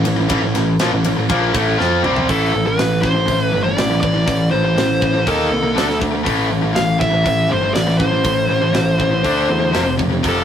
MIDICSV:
0, 0, Header, 1, 6, 480
1, 0, Start_track
1, 0, Key_signature, 0, "minor"
1, 0, Tempo, 496689
1, 295, Time_signature, 4, 2, 24, 8
1, 10090, End_track
2, 0, Start_track
2, 0, Title_t, "Lead electric guitar"
2, 0, Program_c, 0, 29
2, 2224, Note_on_c, 0, 69, 86
2, 2554, Note_off_c, 0, 69, 0
2, 2582, Note_on_c, 0, 71, 84
2, 2912, Note_off_c, 0, 71, 0
2, 2916, Note_on_c, 0, 72, 95
2, 3321, Note_off_c, 0, 72, 0
2, 3321, Note_on_c, 0, 71, 95
2, 3485, Note_off_c, 0, 71, 0
2, 3512, Note_on_c, 0, 74, 102
2, 3856, Note_off_c, 0, 74, 0
2, 3874, Note_on_c, 0, 74, 90
2, 4329, Note_off_c, 0, 74, 0
2, 4357, Note_on_c, 0, 72, 89
2, 5100, Note_on_c, 0, 69, 76
2, 5107, Note_off_c, 0, 72, 0
2, 5779, Note_off_c, 0, 69, 0
2, 6527, Note_on_c, 0, 77, 98
2, 6762, Note_off_c, 0, 77, 0
2, 6766, Note_on_c, 0, 76, 108
2, 7258, Note_on_c, 0, 72, 77
2, 7265, Note_off_c, 0, 76, 0
2, 7475, Note_off_c, 0, 72, 0
2, 7479, Note_on_c, 0, 74, 87
2, 7710, Note_off_c, 0, 74, 0
2, 7714, Note_on_c, 0, 72, 79
2, 9608, Note_off_c, 0, 72, 0
2, 9940, Note_on_c, 0, 69, 74
2, 10090, Note_off_c, 0, 69, 0
2, 10090, End_track
3, 0, Start_track
3, 0, Title_t, "Distorted electric guitar"
3, 0, Program_c, 1, 30
3, 40, Note_on_c, 1, 45, 64
3, 42, Note_on_c, 1, 52, 72
3, 145, Note_off_c, 1, 45, 0
3, 150, Note_off_c, 1, 52, 0
3, 156, Note_on_c, 1, 45, 75
3, 162, Note_on_c, 1, 52, 77
3, 263, Note_off_c, 1, 45, 0
3, 264, Note_off_c, 1, 52, 0
3, 275, Note_on_c, 1, 45, 94
3, 276, Note_on_c, 1, 52, 105
3, 391, Note_off_c, 1, 45, 0
3, 394, Note_off_c, 1, 52, 0
3, 403, Note_on_c, 1, 45, 70
3, 406, Note_on_c, 1, 52, 76
3, 517, Note_off_c, 1, 45, 0
3, 520, Note_off_c, 1, 52, 0
3, 529, Note_on_c, 1, 45, 73
3, 532, Note_on_c, 1, 52, 70
3, 724, Note_off_c, 1, 45, 0
3, 725, Note_off_c, 1, 52, 0
3, 775, Note_on_c, 1, 46, 87
3, 778, Note_on_c, 1, 53, 105
3, 887, Note_off_c, 1, 46, 0
3, 889, Note_off_c, 1, 53, 0
3, 893, Note_on_c, 1, 52, 63
3, 898, Note_on_c, 1, 45, 68
3, 1008, Note_off_c, 1, 45, 0
3, 1013, Note_off_c, 1, 52, 0
3, 1019, Note_on_c, 1, 45, 61
3, 1026, Note_on_c, 1, 52, 74
3, 1114, Note_off_c, 1, 52, 0
3, 1117, Note_off_c, 1, 45, 0
3, 1125, Note_on_c, 1, 52, 68
3, 1129, Note_on_c, 1, 45, 63
3, 1241, Note_off_c, 1, 45, 0
3, 1242, Note_off_c, 1, 52, 0
3, 1244, Note_on_c, 1, 46, 101
3, 1246, Note_on_c, 1, 53, 106
3, 1254, Note_on_c, 1, 58, 107
3, 1474, Note_off_c, 1, 46, 0
3, 1478, Note_on_c, 1, 45, 104
3, 1479, Note_off_c, 1, 53, 0
3, 1481, Note_off_c, 1, 58, 0
3, 1483, Note_on_c, 1, 52, 95
3, 1485, Note_on_c, 1, 57, 106
3, 1716, Note_off_c, 1, 52, 0
3, 1718, Note_off_c, 1, 45, 0
3, 1720, Note_on_c, 1, 60, 100
3, 1722, Note_off_c, 1, 57, 0
3, 1722, Note_on_c, 1, 53, 92
3, 1726, Note_on_c, 1, 65, 109
3, 1959, Note_off_c, 1, 60, 0
3, 1960, Note_off_c, 1, 53, 0
3, 1962, Note_off_c, 1, 65, 0
3, 1964, Note_on_c, 1, 48, 75
3, 1967, Note_on_c, 1, 55, 81
3, 1969, Note_on_c, 1, 60, 88
3, 2201, Note_off_c, 1, 48, 0
3, 2203, Note_off_c, 1, 55, 0
3, 2203, Note_off_c, 1, 60, 0
3, 2209, Note_on_c, 1, 45, 76
3, 2212, Note_on_c, 1, 52, 93
3, 2217, Note_on_c, 1, 57, 88
3, 2432, Note_off_c, 1, 45, 0
3, 2432, Note_off_c, 1, 52, 0
3, 2440, Note_off_c, 1, 57, 0
3, 2444, Note_on_c, 1, 45, 67
3, 2444, Note_on_c, 1, 52, 76
3, 2545, Note_off_c, 1, 52, 0
3, 2551, Note_off_c, 1, 45, 0
3, 2557, Note_on_c, 1, 52, 75
3, 2563, Note_on_c, 1, 45, 65
3, 2669, Note_off_c, 1, 45, 0
3, 2676, Note_off_c, 1, 52, 0
3, 2681, Note_on_c, 1, 45, 66
3, 2688, Note_on_c, 1, 52, 75
3, 2902, Note_off_c, 1, 45, 0
3, 2903, Note_off_c, 1, 52, 0
3, 2915, Note_on_c, 1, 52, 65
3, 2918, Note_on_c, 1, 45, 52
3, 3025, Note_off_c, 1, 52, 0
3, 3027, Note_off_c, 1, 45, 0
3, 3036, Note_on_c, 1, 52, 79
3, 3039, Note_on_c, 1, 45, 55
3, 3136, Note_off_c, 1, 45, 0
3, 3144, Note_off_c, 1, 52, 0
3, 3148, Note_on_c, 1, 45, 77
3, 3156, Note_on_c, 1, 52, 80
3, 3376, Note_off_c, 1, 45, 0
3, 3380, Note_off_c, 1, 52, 0
3, 3398, Note_on_c, 1, 52, 76
3, 3400, Note_on_c, 1, 45, 61
3, 3507, Note_off_c, 1, 52, 0
3, 3517, Note_off_c, 1, 45, 0
3, 3518, Note_on_c, 1, 52, 73
3, 3528, Note_on_c, 1, 45, 60
3, 3628, Note_off_c, 1, 45, 0
3, 3631, Note_off_c, 1, 52, 0
3, 3640, Note_on_c, 1, 45, 74
3, 3642, Note_on_c, 1, 52, 81
3, 3756, Note_off_c, 1, 45, 0
3, 3756, Note_off_c, 1, 52, 0
3, 3767, Note_on_c, 1, 45, 62
3, 3768, Note_on_c, 1, 52, 82
3, 3876, Note_off_c, 1, 45, 0
3, 3878, Note_off_c, 1, 52, 0
3, 3888, Note_on_c, 1, 45, 57
3, 3890, Note_on_c, 1, 52, 74
3, 3991, Note_off_c, 1, 52, 0
3, 3994, Note_off_c, 1, 45, 0
3, 4003, Note_on_c, 1, 52, 78
3, 4005, Note_on_c, 1, 45, 59
3, 4106, Note_off_c, 1, 45, 0
3, 4111, Note_off_c, 1, 52, 0
3, 4118, Note_on_c, 1, 45, 72
3, 4123, Note_on_c, 1, 52, 78
3, 4341, Note_off_c, 1, 45, 0
3, 4344, Note_off_c, 1, 52, 0
3, 4353, Note_on_c, 1, 52, 77
3, 4356, Note_on_c, 1, 45, 62
3, 4476, Note_off_c, 1, 52, 0
3, 4481, Note_off_c, 1, 45, 0
3, 4488, Note_on_c, 1, 52, 76
3, 4493, Note_on_c, 1, 45, 59
3, 4595, Note_off_c, 1, 45, 0
3, 4602, Note_off_c, 1, 52, 0
3, 4607, Note_on_c, 1, 45, 69
3, 4614, Note_on_c, 1, 52, 73
3, 4826, Note_off_c, 1, 45, 0
3, 4829, Note_off_c, 1, 52, 0
3, 4843, Note_on_c, 1, 45, 61
3, 4843, Note_on_c, 1, 52, 78
3, 4952, Note_off_c, 1, 52, 0
3, 4955, Note_off_c, 1, 45, 0
3, 4964, Note_on_c, 1, 52, 68
3, 4967, Note_on_c, 1, 45, 65
3, 5078, Note_off_c, 1, 45, 0
3, 5082, Note_on_c, 1, 51, 93
3, 5086, Note_off_c, 1, 52, 0
3, 5090, Note_on_c, 1, 58, 92
3, 5090, Note_on_c, 1, 63, 93
3, 5305, Note_off_c, 1, 58, 0
3, 5308, Note_off_c, 1, 51, 0
3, 5316, Note_on_c, 1, 58, 91
3, 5318, Note_off_c, 1, 63, 0
3, 5320, Note_on_c, 1, 51, 67
3, 5426, Note_off_c, 1, 58, 0
3, 5430, Note_off_c, 1, 51, 0
3, 5437, Note_on_c, 1, 58, 69
3, 5441, Note_on_c, 1, 51, 58
3, 5547, Note_off_c, 1, 51, 0
3, 5551, Note_on_c, 1, 50, 92
3, 5555, Note_off_c, 1, 58, 0
3, 5559, Note_on_c, 1, 57, 91
3, 5565, Note_on_c, 1, 62, 84
3, 5662, Note_off_c, 1, 57, 0
3, 5666, Note_off_c, 1, 50, 0
3, 5674, Note_on_c, 1, 57, 81
3, 5675, Note_off_c, 1, 62, 0
3, 5677, Note_on_c, 1, 50, 65
3, 5783, Note_off_c, 1, 57, 0
3, 5786, Note_off_c, 1, 50, 0
3, 5795, Note_on_c, 1, 57, 62
3, 5797, Note_on_c, 1, 50, 63
3, 5893, Note_off_c, 1, 57, 0
3, 5897, Note_off_c, 1, 50, 0
3, 5904, Note_on_c, 1, 57, 79
3, 5909, Note_on_c, 1, 50, 70
3, 6019, Note_off_c, 1, 50, 0
3, 6022, Note_off_c, 1, 57, 0
3, 6023, Note_on_c, 1, 45, 87
3, 6026, Note_on_c, 1, 52, 89
3, 6033, Note_on_c, 1, 57, 84
3, 6261, Note_off_c, 1, 52, 0
3, 6264, Note_off_c, 1, 45, 0
3, 6269, Note_off_c, 1, 57, 0
3, 6272, Note_on_c, 1, 52, 69
3, 6276, Note_on_c, 1, 45, 56
3, 6381, Note_off_c, 1, 52, 0
3, 6384, Note_off_c, 1, 45, 0
3, 6392, Note_on_c, 1, 52, 83
3, 6396, Note_on_c, 1, 45, 68
3, 6491, Note_off_c, 1, 45, 0
3, 6501, Note_off_c, 1, 52, 0
3, 6502, Note_on_c, 1, 45, 79
3, 6513, Note_on_c, 1, 52, 83
3, 6734, Note_off_c, 1, 45, 0
3, 6736, Note_off_c, 1, 52, 0
3, 6747, Note_on_c, 1, 52, 70
3, 6753, Note_on_c, 1, 45, 56
3, 6853, Note_off_c, 1, 52, 0
3, 6855, Note_off_c, 1, 45, 0
3, 6864, Note_on_c, 1, 52, 77
3, 6867, Note_on_c, 1, 45, 62
3, 6986, Note_off_c, 1, 52, 0
3, 6987, Note_off_c, 1, 45, 0
3, 6997, Note_on_c, 1, 52, 83
3, 6999, Note_on_c, 1, 45, 70
3, 7215, Note_off_c, 1, 52, 0
3, 7223, Note_off_c, 1, 45, 0
3, 7227, Note_on_c, 1, 52, 86
3, 7235, Note_on_c, 1, 45, 60
3, 7343, Note_off_c, 1, 52, 0
3, 7352, Note_off_c, 1, 45, 0
3, 7355, Note_on_c, 1, 52, 68
3, 7363, Note_on_c, 1, 45, 58
3, 7474, Note_off_c, 1, 45, 0
3, 7474, Note_off_c, 1, 52, 0
3, 7485, Note_on_c, 1, 45, 78
3, 7486, Note_on_c, 1, 52, 84
3, 7592, Note_off_c, 1, 52, 0
3, 7596, Note_off_c, 1, 45, 0
3, 7604, Note_on_c, 1, 52, 88
3, 7608, Note_on_c, 1, 45, 67
3, 7714, Note_off_c, 1, 52, 0
3, 7718, Note_off_c, 1, 45, 0
3, 7725, Note_on_c, 1, 52, 68
3, 7729, Note_on_c, 1, 45, 60
3, 7828, Note_off_c, 1, 52, 0
3, 7834, Note_off_c, 1, 45, 0
3, 7840, Note_on_c, 1, 52, 80
3, 7846, Note_on_c, 1, 45, 65
3, 7944, Note_off_c, 1, 45, 0
3, 7950, Note_off_c, 1, 52, 0
3, 7956, Note_on_c, 1, 45, 79
3, 7961, Note_on_c, 1, 52, 76
3, 8180, Note_off_c, 1, 52, 0
3, 8182, Note_off_c, 1, 45, 0
3, 8191, Note_on_c, 1, 52, 71
3, 8194, Note_on_c, 1, 45, 60
3, 8306, Note_off_c, 1, 52, 0
3, 8309, Note_off_c, 1, 45, 0
3, 8318, Note_on_c, 1, 52, 83
3, 8321, Note_on_c, 1, 45, 64
3, 8422, Note_off_c, 1, 45, 0
3, 8429, Note_off_c, 1, 52, 0
3, 8434, Note_on_c, 1, 45, 67
3, 8440, Note_on_c, 1, 52, 78
3, 8661, Note_off_c, 1, 45, 0
3, 8665, Note_off_c, 1, 52, 0
3, 8680, Note_on_c, 1, 52, 66
3, 8683, Note_on_c, 1, 45, 58
3, 8793, Note_off_c, 1, 52, 0
3, 8798, Note_off_c, 1, 45, 0
3, 8804, Note_on_c, 1, 52, 68
3, 8809, Note_on_c, 1, 45, 60
3, 8920, Note_off_c, 1, 45, 0
3, 8924, Note_on_c, 1, 50, 94
3, 8929, Note_off_c, 1, 52, 0
3, 8933, Note_on_c, 1, 57, 90
3, 8939, Note_on_c, 1, 62, 96
3, 9153, Note_off_c, 1, 57, 0
3, 9156, Note_off_c, 1, 50, 0
3, 9164, Note_off_c, 1, 62, 0
3, 9165, Note_on_c, 1, 57, 79
3, 9173, Note_on_c, 1, 50, 69
3, 9261, Note_off_c, 1, 57, 0
3, 9265, Note_off_c, 1, 50, 0
3, 9273, Note_on_c, 1, 57, 74
3, 9276, Note_on_c, 1, 50, 57
3, 9393, Note_on_c, 1, 41, 88
3, 9394, Note_off_c, 1, 50, 0
3, 9398, Note_off_c, 1, 57, 0
3, 9398, Note_on_c, 1, 48, 88
3, 9402, Note_on_c, 1, 53, 89
3, 9509, Note_off_c, 1, 48, 0
3, 9511, Note_off_c, 1, 41, 0
3, 9516, Note_off_c, 1, 53, 0
3, 9521, Note_on_c, 1, 48, 82
3, 9524, Note_on_c, 1, 41, 68
3, 9628, Note_off_c, 1, 41, 0
3, 9628, Note_off_c, 1, 48, 0
3, 9640, Note_on_c, 1, 41, 55
3, 9640, Note_on_c, 1, 48, 73
3, 9737, Note_off_c, 1, 48, 0
3, 9746, Note_off_c, 1, 41, 0
3, 9749, Note_on_c, 1, 48, 91
3, 9758, Note_on_c, 1, 41, 69
3, 9871, Note_off_c, 1, 41, 0
3, 9871, Note_off_c, 1, 48, 0
3, 9882, Note_on_c, 1, 48, 90
3, 9883, Note_on_c, 1, 41, 94
3, 9891, Note_on_c, 1, 53, 100
3, 10090, Note_off_c, 1, 41, 0
3, 10090, Note_off_c, 1, 48, 0
3, 10090, Note_off_c, 1, 53, 0
3, 10090, End_track
4, 0, Start_track
4, 0, Title_t, "Distorted electric guitar"
4, 0, Program_c, 2, 30
4, 196, Note_on_c, 2, 45, 67
4, 291, Note_off_c, 2, 45, 0
4, 6545, Note_on_c, 2, 45, 66
4, 6756, Note_off_c, 2, 45, 0
4, 10090, End_track
5, 0, Start_track
5, 0, Title_t, "Picked electric bass"
5, 0, Program_c, 3, 34
5, 67, Note_on_c, 3, 33, 88
5, 173, Note_off_c, 3, 33, 0
5, 191, Note_on_c, 3, 33, 75
5, 283, Note_off_c, 3, 33, 0
5, 289, Note_on_c, 3, 33, 96
5, 403, Note_off_c, 3, 33, 0
5, 424, Note_on_c, 3, 33, 86
5, 531, Note_off_c, 3, 33, 0
5, 540, Note_on_c, 3, 33, 81
5, 760, Note_off_c, 3, 33, 0
5, 776, Note_on_c, 3, 34, 95
5, 887, Note_off_c, 3, 34, 0
5, 898, Note_on_c, 3, 33, 89
5, 1007, Note_off_c, 3, 33, 0
5, 1020, Note_on_c, 3, 33, 76
5, 1129, Note_off_c, 3, 33, 0
5, 1134, Note_on_c, 3, 33, 83
5, 1245, Note_off_c, 3, 33, 0
5, 1254, Note_on_c, 3, 34, 95
5, 1477, Note_off_c, 3, 34, 0
5, 1488, Note_on_c, 3, 33, 97
5, 1713, Note_off_c, 3, 33, 0
5, 1743, Note_on_c, 3, 41, 87
5, 1961, Note_off_c, 3, 41, 0
5, 1979, Note_on_c, 3, 36, 92
5, 2199, Note_off_c, 3, 36, 0
5, 2218, Note_on_c, 3, 33, 87
5, 2443, Note_off_c, 3, 33, 0
5, 2461, Note_on_c, 3, 33, 88
5, 2684, Note_off_c, 3, 33, 0
5, 2697, Note_on_c, 3, 33, 83
5, 3150, Note_off_c, 3, 33, 0
5, 3174, Note_on_c, 3, 33, 82
5, 3400, Note_off_c, 3, 33, 0
5, 3408, Note_on_c, 3, 31, 87
5, 3638, Note_off_c, 3, 31, 0
5, 3651, Note_on_c, 3, 33, 85
5, 3879, Note_off_c, 3, 33, 0
5, 3892, Note_on_c, 3, 33, 78
5, 4120, Note_off_c, 3, 33, 0
5, 4127, Note_on_c, 3, 33, 92
5, 4357, Note_off_c, 3, 33, 0
5, 4371, Note_on_c, 3, 33, 86
5, 4599, Note_off_c, 3, 33, 0
5, 4611, Note_on_c, 3, 33, 77
5, 5067, Note_off_c, 3, 33, 0
5, 5092, Note_on_c, 3, 39, 85
5, 5320, Note_off_c, 3, 39, 0
5, 5330, Note_on_c, 3, 36, 88
5, 5559, Note_off_c, 3, 36, 0
5, 5572, Note_on_c, 3, 38, 78
5, 5800, Note_off_c, 3, 38, 0
5, 5810, Note_on_c, 3, 38, 84
5, 6040, Note_off_c, 3, 38, 0
5, 6055, Note_on_c, 3, 33, 86
5, 6282, Note_off_c, 3, 33, 0
5, 6303, Note_on_c, 3, 33, 81
5, 6527, Note_off_c, 3, 33, 0
5, 6548, Note_on_c, 3, 33, 91
5, 6997, Note_off_c, 3, 33, 0
5, 7012, Note_on_c, 3, 33, 81
5, 7241, Note_off_c, 3, 33, 0
5, 7265, Note_on_c, 3, 31, 89
5, 7481, Note_off_c, 3, 31, 0
5, 7487, Note_on_c, 3, 33, 75
5, 7719, Note_off_c, 3, 33, 0
5, 7726, Note_on_c, 3, 33, 79
5, 7958, Note_off_c, 3, 33, 0
5, 7972, Note_on_c, 3, 33, 93
5, 8201, Note_off_c, 3, 33, 0
5, 8211, Note_on_c, 3, 33, 80
5, 8436, Note_off_c, 3, 33, 0
5, 8442, Note_on_c, 3, 33, 83
5, 8904, Note_off_c, 3, 33, 0
5, 8934, Note_on_c, 3, 38, 80
5, 9163, Note_off_c, 3, 38, 0
5, 9175, Note_on_c, 3, 40, 80
5, 9404, Note_off_c, 3, 40, 0
5, 9422, Note_on_c, 3, 29, 79
5, 9648, Note_off_c, 3, 29, 0
5, 9657, Note_on_c, 3, 29, 82
5, 9885, Note_off_c, 3, 29, 0
5, 9898, Note_on_c, 3, 29, 94
5, 10090, Note_off_c, 3, 29, 0
5, 10090, End_track
6, 0, Start_track
6, 0, Title_t, "Drums"
6, 48, Note_on_c, 9, 51, 85
6, 144, Note_off_c, 9, 51, 0
6, 283, Note_on_c, 9, 51, 100
6, 289, Note_on_c, 9, 36, 102
6, 380, Note_off_c, 9, 51, 0
6, 386, Note_off_c, 9, 36, 0
6, 529, Note_on_c, 9, 51, 76
6, 534, Note_on_c, 9, 38, 35
6, 626, Note_off_c, 9, 51, 0
6, 631, Note_off_c, 9, 38, 0
6, 767, Note_on_c, 9, 51, 95
6, 771, Note_on_c, 9, 38, 101
6, 863, Note_off_c, 9, 51, 0
6, 868, Note_off_c, 9, 38, 0
6, 1008, Note_on_c, 9, 51, 79
6, 1105, Note_off_c, 9, 51, 0
6, 1250, Note_on_c, 9, 51, 87
6, 1254, Note_on_c, 9, 36, 100
6, 1346, Note_off_c, 9, 51, 0
6, 1351, Note_off_c, 9, 36, 0
6, 1493, Note_on_c, 9, 36, 118
6, 1493, Note_on_c, 9, 51, 78
6, 1589, Note_off_c, 9, 51, 0
6, 1590, Note_off_c, 9, 36, 0
6, 1742, Note_on_c, 9, 38, 62
6, 1839, Note_off_c, 9, 38, 0
6, 1974, Note_on_c, 9, 45, 95
6, 2071, Note_off_c, 9, 45, 0
6, 2091, Note_on_c, 9, 43, 92
6, 2188, Note_off_c, 9, 43, 0
6, 2211, Note_on_c, 9, 46, 56
6, 2215, Note_on_c, 9, 36, 104
6, 2308, Note_off_c, 9, 46, 0
6, 2311, Note_off_c, 9, 36, 0
6, 2694, Note_on_c, 9, 46, 52
6, 2699, Note_on_c, 9, 38, 107
6, 2791, Note_off_c, 9, 46, 0
6, 2795, Note_off_c, 9, 38, 0
6, 2932, Note_on_c, 9, 36, 81
6, 2939, Note_on_c, 9, 38, 32
6, 3029, Note_off_c, 9, 36, 0
6, 3035, Note_off_c, 9, 38, 0
6, 3171, Note_on_c, 9, 36, 81
6, 3171, Note_on_c, 9, 46, 53
6, 3267, Note_off_c, 9, 46, 0
6, 3268, Note_off_c, 9, 36, 0
6, 3653, Note_on_c, 9, 46, 59
6, 3657, Note_on_c, 9, 38, 103
6, 3749, Note_off_c, 9, 46, 0
6, 3754, Note_off_c, 9, 38, 0
6, 3893, Note_on_c, 9, 36, 86
6, 3990, Note_off_c, 9, 36, 0
6, 4133, Note_on_c, 9, 36, 106
6, 4138, Note_on_c, 9, 46, 56
6, 4229, Note_off_c, 9, 36, 0
6, 4234, Note_off_c, 9, 46, 0
6, 4616, Note_on_c, 9, 46, 51
6, 4621, Note_on_c, 9, 38, 106
6, 4713, Note_off_c, 9, 46, 0
6, 4718, Note_off_c, 9, 38, 0
6, 4853, Note_on_c, 9, 36, 78
6, 4950, Note_off_c, 9, 36, 0
6, 5093, Note_on_c, 9, 36, 83
6, 5098, Note_on_c, 9, 46, 48
6, 5189, Note_off_c, 9, 36, 0
6, 5195, Note_off_c, 9, 46, 0
6, 5581, Note_on_c, 9, 46, 53
6, 5586, Note_on_c, 9, 38, 113
6, 5678, Note_off_c, 9, 46, 0
6, 5683, Note_off_c, 9, 38, 0
6, 5705, Note_on_c, 9, 38, 32
6, 5801, Note_off_c, 9, 38, 0
6, 5814, Note_on_c, 9, 36, 86
6, 5910, Note_off_c, 9, 36, 0
6, 6054, Note_on_c, 9, 36, 99
6, 6054, Note_on_c, 9, 46, 53
6, 6150, Note_off_c, 9, 36, 0
6, 6150, Note_off_c, 9, 46, 0
6, 6529, Note_on_c, 9, 46, 53
6, 6534, Note_on_c, 9, 38, 102
6, 6626, Note_off_c, 9, 46, 0
6, 6631, Note_off_c, 9, 38, 0
6, 6775, Note_on_c, 9, 36, 88
6, 6785, Note_on_c, 9, 38, 34
6, 6871, Note_off_c, 9, 36, 0
6, 6882, Note_off_c, 9, 38, 0
6, 7013, Note_on_c, 9, 36, 87
6, 7018, Note_on_c, 9, 46, 48
6, 7110, Note_off_c, 9, 36, 0
6, 7114, Note_off_c, 9, 46, 0
6, 7491, Note_on_c, 9, 46, 56
6, 7496, Note_on_c, 9, 38, 110
6, 7588, Note_off_c, 9, 46, 0
6, 7593, Note_off_c, 9, 38, 0
6, 7617, Note_on_c, 9, 38, 34
6, 7714, Note_off_c, 9, 38, 0
6, 7730, Note_on_c, 9, 36, 87
6, 7826, Note_off_c, 9, 36, 0
6, 7964, Note_on_c, 9, 46, 53
6, 7969, Note_on_c, 9, 36, 101
6, 8060, Note_off_c, 9, 46, 0
6, 8066, Note_off_c, 9, 36, 0
6, 8448, Note_on_c, 9, 46, 54
6, 8453, Note_on_c, 9, 38, 98
6, 8545, Note_off_c, 9, 46, 0
6, 8550, Note_off_c, 9, 38, 0
6, 8695, Note_on_c, 9, 36, 85
6, 8791, Note_off_c, 9, 36, 0
6, 8934, Note_on_c, 9, 46, 53
6, 8935, Note_on_c, 9, 36, 71
6, 9031, Note_off_c, 9, 36, 0
6, 9031, Note_off_c, 9, 46, 0
6, 9414, Note_on_c, 9, 46, 53
6, 9419, Note_on_c, 9, 38, 107
6, 9511, Note_off_c, 9, 46, 0
6, 9516, Note_off_c, 9, 38, 0
6, 9657, Note_on_c, 9, 36, 81
6, 9753, Note_off_c, 9, 36, 0
6, 9897, Note_on_c, 9, 36, 109
6, 9899, Note_on_c, 9, 46, 50
6, 9993, Note_off_c, 9, 36, 0
6, 9995, Note_off_c, 9, 46, 0
6, 10090, End_track
0, 0, End_of_file